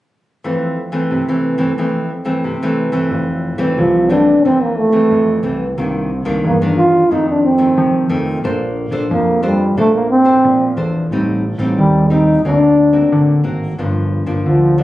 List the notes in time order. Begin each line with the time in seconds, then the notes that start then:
0.44 F2 E3 A3 C4
0.92 E3 A3 C4
1.11 C3
1.28 E3 A3 C4
1.58 E3 A3 C4
1.78 F2 E3 A3 C4
2.25 E3 A3 C4
2.44 C3
2.63 E3 A3 C4
2.92 E3 A3 C4
3.11 F1 F2
3.58 F1 E3 A3 C4
3.78 C2 C3 F3
4.09 E3 A3 C4 D4
4.44 F1 F2 E3 A3 C4
4.62 A#3
4.77 A3
4.92 E3 A3 C4
5.11 F2 C3
5.43 C2 E3 A3 C4
5.78 C2 C3 D#3 A#3 D4
6.25 C2 D#3 A#3 D4
6.44 E2 G2 A#3
6.62 D#3 A#3 D4
6.77 F4
7.11 F2 D#3 A3 C4 D#4
7.30 D4
7.44 C4
7.58 D#3 A3 C4
7.77 C3 F3
8.09 F2 D#3 A3 C4
8.44 A#1 A#3 D4 A4 C5
8.91 A#1 D4 A4 C5
9.11 F2 F3 A#3
9.43 G3 D4 A4 C5
9.77 A#1 A3 A#3 D4 A4 C5
9.95 A#3
10.10 C4
10.24 D4 A4 C5
10.44 A#2 F3
10.76 E2 D4 A4 C5
11.11 A1 A2 G3 C4 D#4
11.58 A1 G3 C4 D#4
11.77 D#2 A2 G3
12.09 G3 C4 D#4
12.45 D2 D3 A#3 C4 D4 F#4
12.93 A#3 C4 F#4
13.12 A2 D3
13.43 G#1 A#3 C4 F#4
13.78 G1 G2 F3 A#3 D4
14.26 G1 F3 A#3 D4
14.46 D2 D3 F3
14.78 F3 A#3 D4